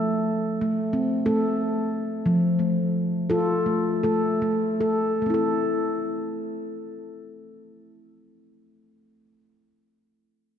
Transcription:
Already playing: A3
0.61 A3
0.93 C4
1.26 A3 A4
2.26 F3
2.59 A3
3.30 F4 A4
3.66 A3
4.03 A3 A4
4.42 A3
4.81 A4
5.22 A3
5.26 C4 E4
5.34 A4

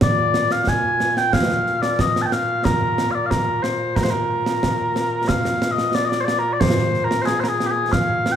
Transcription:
0.01 A#2 D5, concert bass drum, snare
0.34 snare
0.51 F5, snare
0.67 G#5, concert bass drum, snare
1.00 snare
1.17 G5, snare
1.33 F5, concert bass drum, snare
1.66 snare
1.82 D5, snare
1.99 D#5, concert bass drum, snare
2.16 snare
2.22 G5 A5
2.32 F5, snare
2.65 A#4, concert bass drum, snare
2.98 snare
3.11 D5 F5
3.26 F5
3.31 A#4, concert bass drum, snare
3.62 C5, snare
3.96 A#4, concert bass drum, snare
4.03 C5
4.10 A#4
4.46 snare
4.63 concert bass drum, snare
4.96 snare
5.28 F5, concert bass drum, snare
5.45 snare
5.62 snare
5.72 D#5
5.78 snare
5.95 D5, snare
6.05 D#5
6.09 D5, snare
6.21 C5 D5
6.28 snare
6.39 A#4
6.53 D5
6.60 C5, concert bass drum, snare
6.94 snare
7.04 A#4
7.11 snare
7.22 G#4 C5
7.27 snare
7.40 A#4 C5, snare
7.49 G#4
7.60 snare
7.66 G4
7.71 G#4
7.92 F5, concert bass drum, snare
8.26 snare
8.32 G5

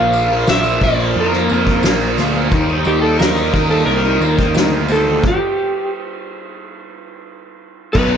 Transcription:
Already playing: A#1 A#2 A#3 F4 D5 F5
0.00 F3
0.13 ride, tambourine
0.30 F3 A#3
0.47 A#1 A#2 F3 A#3 E5, snare, ride, tambourine
0.64 tambourine
0.81 A#1 A#2 F3 A#3 D5, kick, ride
1.00 F3 A#3
1.14 F2, ride
1.20 A#4
1.32 A#3, snare, tambourine
1.36 F3
1.49 F2 A#2 F3 A#3, ride, tambourine
1.67 F3 A#3, kick, tambourine
1.83 A#1 A#2 F3, snare, ride, tambourine
1.87 A#3
2.01 tambourine
2.17 D2 A#2 F3 A#3, snare, ride, tambourine
2.35 A#3, tambourine
2.39 F3
2.52 D#2 D#3 A#3 D#4, kick, ride, tambourine
2.56 G3 D#4 C5
2.69 D#4, tambourine
2.73 A#3
2.85 D#2 G4, ride, tambourine
3.02 D#4 A4
3.06 A#3
3.19 D#2 D#3 A#3 A#4, snare, ride, tambourine
3.24 D#4
3.36 tambourine
3.52 D#2 D#3 A#3 D#4, kick, ride
3.70 A#3 D#4 A4
3.86 C2 A#4, ride
4.05 A#3 D#4, tambourine
4.20 D#2 D#3 A#3 D#4, ride, tambourine
4.39 A#3 D#4, kick, tambourine
4.54 D2 D#3 A#3, snare, ride, tambourine
4.58 D#4
4.72 tambourine
4.88 D#3 A#3 A4, ride, tambourine
4.93 D#4
5.07 A#3 D#4
5.23 kick, crash
5.28 G4
7.93 B1 B2 F#3 D#4 B4, kick, crash, tambourine
7.98 B3

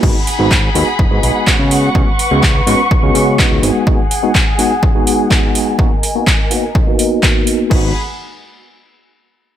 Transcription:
0.02 G#1 G#3 B3 D#4 F#4 G#4 F#5 B5, kick, crash
0.27 open hi-hat
0.39 G#1 G#3 B3 D#4 F#4
0.51 kick, clap
0.75 D#2 G#3 B3 D#4 F#4, open hi-hat
0.99 F#1, kick
1.10 G#2 G#3 B3 D#4 F#4
1.23 B1, open hi-hat
1.47 G#3 B3 C#4 F#4, kick, clap
1.59 C#3
1.71 B4 C#6, open hi-hat
1.95 C#2 G#3 B3 C#4 F#4, kick
2.19 open hi-hat
2.31 C#2 G#3 B3 C#4 F#4
2.43 kick, clap
2.67 G#2 G#3 B3 C#4 F#4, open hi-hat
2.91 kick
3.03 C#2 G#3 B3 C#4 F#4
3.15 C#3, open hi-hat
3.39 B3 D#4 F#4, kick, clap
3.51 C#2
3.63 G#1 G#4 F#5 G#5, open hi-hat
3.87 G#3 B3 D#4 F#4, kick
4.11 open hi-hat
4.22 G#3 B3 D#4 F#4
4.35 kick, clap
4.58 G#3 B3 D#4 F#4, open hi-hat
4.83 kick
4.95 G#3 B3 D#4 F#4
5.07 open hi-hat
5.30 G#3 B3 D#4 F#4, kick, clap
5.55 open hi-hat
5.78 A#3 B3 D#4 F#4 A#4 D#5, kick
6.03 open hi-hat
6.15 A#3 B3 D#4 F#4
6.27 kick, clap
6.51 A#3 B3 D#4 F#4, open hi-hat
6.75 kick
6.87 A#3 B3 D#4 F#4
6.99 open hi-hat
7.23 A#3 B3, kick, clap
7.47 open hi-hat
7.70 G#1 G#3 B3 D#4 F#4 G#4 F#5 B5, kick, crash

